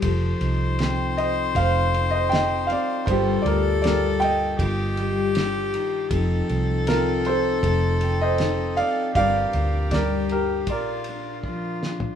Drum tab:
RD |x-x-x-x-x-x-x-x-|x-x-x-x-x-x-x-x-|x-x-x-x-x-x-x-x-|x-x-x-x-x-x-----|
SD |----o-------o---|----o-------o---|----o-------o---|----o---------o-|
FT |----------------|----------------|----------------|---------------o|
BD |o-------o-------|o-------o-------|o-------o-------|o---o---o---o---|